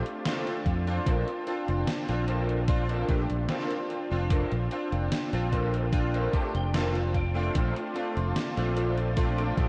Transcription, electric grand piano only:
0.25 0.82 A3 medium
0.25 0.82 C4 medium
0.25 0.82 D4 medium
0.25 0.82 F4 loud
0.87 1.42 C4 medium
0.87 1.42 D4 medium
0.87 1.42 F4 loud
1.46 2.03 C4 medium
1.46 2.04 D4 medium
1.46 2.04 F4 medium
2.08 2.64 C4 medium
2.08 2.64 D4 medium
2.08 2.64 F4 loud
2.68 3.04 C4 medium
2.68 3.04 D4 medium
2.68 3.05 F4 loud
3.08 3.25 A3 medium
3.08 3.26 C4 medium
3.08 3.26 D4 medium
3.08 3.26 G4 medium
3.49 4.06 C4 medium
3.49 4.06 D4 medium
3.49 4.06 F4 loud
4.11 4.66 C4 medium
4.11 4.66 D4 medium
4.11 4.67 F4 loud
4.71 5.28 C4 medium
4.71 5.28 D4 medium
4.71 5.28 F4 medium
5.33 5.88 C4 medium
5.33 5.88 D4 medium
5.33 5.89 F4 loud
5.92 6.28 C4 loud
5.92 6.28 D4 medium
5.92 6.29 F4 loud
6.32 6.50 A3 medium
6.32 6.50 C4 medium
6.32 6.50 D4 medium
6.32 6.50 G4 medium
6.73 7.30 C4 medium
6.73 7.30 D4 medium
6.73 7.31 F4 loud
7.34 7.90 A3 medium
7.34 7.90 C4 medium
7.34 7.91 D4 medium
7.34 7.91 F4 loud
7.94 8.51 A3 medium
7.94 8.52 C4 medium
7.94 8.52 D4 medium
7.94 8.52 F4 medium
8.56 9.12 A3 medium
8.56 9.12 C4 medium
8.56 9.13 D4 medium
8.56 9.13 F4 loud
9.16 9.53 A3 loud
9.16 9.53 C4 medium
9.16 9.53 D4 medium
9.16 9.53 F4 loud
9.57 9.69 A3 medium
9.57 9.69 C4 medium
9.57 9.69 D4 medium
9.57 9.69 G4 medium

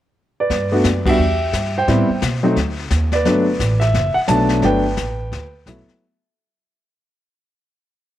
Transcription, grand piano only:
0.40 1.04 B4 soft
0.40 1.10 D5 medium
0.72 0.84 A3 medium
0.72 0.84 B3 medium
0.72 0.84 D4 medium
0.72 0.84 F#4 medium
1.06 1.18 G3 medium
1.06 1.18 B3 medium
1.06 1.18 D4 medium
1.06 1.18 F#4 medium
1.06 1.72 G4 soft
1.06 1.72 E5 medium
1.78 2.41 C5 medium
1.78 2.21 G5 medium
1.88 2.07 G3 medium
1.88 2.07 B3 medium
1.88 2.07 C4 medium
1.88 2.08 E4 medium
2.43 2.55 F#3 medium
2.43 2.55 A3 medium
2.43 2.55 C4 medium
2.43 2.56 D#4 medium
3.13 3.79 B4 medium
3.13 3.78 D5 medium
3.26 3.45 F#3 medium
3.26 3.45 A3 medium
3.26 3.45 B3 medium
3.26 3.45 D4 medium
3.80 4.13 E5 medium
4.14 4.19 F#5 medium
4.28 4.61 F#3 medium
4.28 4.62 A3 soft
4.28 4.62 B3 soft
4.28 4.62 D4 medium
4.28 4.64 A5 medium
4.63 4.82 F#3 medium
4.63 4.83 A3 medium
4.63 4.83 B3 medium
4.63 4.83 D4 medium
4.63 5.64 B4 medium
4.63 5.64 G5 medium
5.68 6.02 F#3 medium
5.68 6.02 A3 soft
5.68 6.02 B3 medium
5.68 6.02 E4 medium

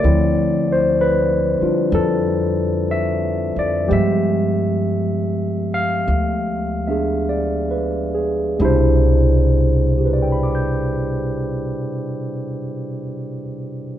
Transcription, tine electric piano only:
0.00 3.88 D3 medium
0.00 0.22 C#5 soft
0.00 0.66 D5 medium
0.04 3.86 F3 soft
0.04 3.89 C4 soft
0.04 3.89 E4 medium
0.72 1.01 C5 medium
1.01 1.89 B4 medium
1.59 3.88 G3 soft
1.59 3.89 D4 soft
1.59 3.89 F4 soft
1.95 2.86 A4 medium
2.91 3.53 E5 medium
3.59 3.91 D5 medium
3.87 8.59 F3 medium
3.87 8.59 G#3 soft
3.87 6.86 B3 soft
3.87 8.59 G4 medium
3.93 4.92 E5 medium
5.74 8.14 F5 medium
6.87 8.59 B3 soft
6.87 8.60 D4 soft
6.87 8.14 G#4 soft
6.87 7.53 E5 soft
7.29 8.12 D5 soft
7.71 8.41 B4 soft
8.15 8.87 G#4 soft
8.59 11.76 B2 medium
8.59 11.75 C3 medium
8.59 11.76 G3 medium
8.59 11.77 D4 soft
8.59 11.78 E4 medium
8.65 11.77 C5 medium
9.98 13.10 G4 soft
10.05 13.17 B4 soft
10.13 13.25 D5 soft
10.22 13.34 G5 soft
10.32 13.44 B5 soft
10.43 13.55 D6 soft
10.55 13.67 G6 soft

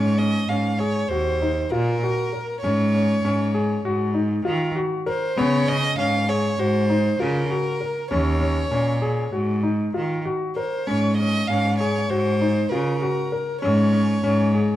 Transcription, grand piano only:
0.00 0.11 C#4 medium
0.18 0.42 C#4 medium
0.49 0.73 C#4 medium
0.80 1.04 G#4 medium
1.11 1.34 F#4 medium
1.42 1.65 D#4 medium
1.72 1.95 F4 medium
2.03 2.26 F#4 medium
2.33 2.57 A#4 medium
2.64 2.87 C#4 medium
2.94 3.17 C#4 medium
3.25 3.48 C#4 medium
3.54 3.78 G#4 medium
3.85 4.08 F#4 medium
4.14 4.38 D#4 medium
4.45 4.68 F4 medium
4.76 4.99 F#4 medium
5.06 5.30 A#4 medium
5.37 5.61 B3 loud
5.68 5.91 C#4 medium
5.98 6.21 C#4 medium
6.28 6.52 G#4 medium
6.59 6.82 F#4 medium
6.90 7.13 D#4 medium
7.20 7.43 F4 medium
7.50 7.73 F#4 medium
7.81 8.04 A#4 medium
8.11 8.34 C#4 medium
8.40 8.64 C#4 medium
8.71 8.95 C#4 medium
9.02 9.25 G#4 medium
9.32 9.56 F#4 medium
9.63 9.87 D#4 medium
9.94 10.18 F4 medium
10.25 10.49 F#4 medium
10.56 10.80 A#4 medium
10.87 11.11 C#4 loud
11.20 11.43 C#4 medium
11.50 11.73 C#4 medium
11.80 12.04 G#4 medium
12.11 12.34 F#4 medium
12.41 12.65 D#4 medium
12.72 12.95 F4 medium
13.02 13.25 F#4 medium
13.32 13.56 A#4 medium
13.62 13.86 C#4 loud
13.92 14.16 C#4 medium
14.23 14.47 C#4 loud
14.54 14.76 G#4 medium

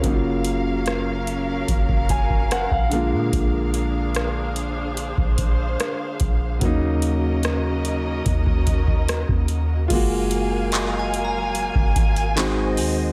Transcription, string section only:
0.00 2.89 C#4 medium
0.00 4.52 A#4 medium
0.00 6.57 F5 medium
0.04 2.89 F#3 medium
2.92 6.58 D4 medium
2.92 6.58 G#4 medium
4.57 6.60 C5 medium
6.62 9.87 C#4 medium
6.62 9.88 F#4 medium
6.62 9.87 A#4 medium
6.62 9.87 D#5 medium
9.90 13.12 F#3 medium
9.90 12.34 A#4 medium
9.90 12.34 F5 medium
9.90 13.12 G#5 medium
12.37 13.12 C5 medium
12.37 13.12 D#5 medium

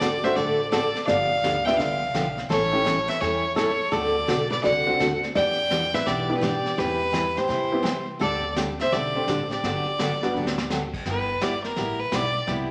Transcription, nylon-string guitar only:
0.00 0.20 A4 medium
0.24 0.37 C5 medium
0.37 0.71 A4 medium
0.72 1.05 A4 medium
1.07 1.62 D5 medium
1.67 1.80 E5 medium
1.80 2.38 D5 medium
2.50 3.08 A4 medium
3.08 3.20 B4 medium
3.20 3.55 A4 medium
3.56 3.90 A4 medium
3.92 4.50 A4 medium
4.50 4.63 B4 medium
4.64 5.18 D5 medium
5.35 5.90 D5 medium
5.94 6.07 B4 medium
6.07 6.37 G4 medium
6.38 6.41 G4 medium
6.43 6.77 G4 medium
6.78 7.36 G4 medium
7.38 8.08 G4 medium
8.21 8.54 A4 medium
8.82 8.95 C5 medium
8.95 9.52 A4 medium
9.53 10.67 G4 medium

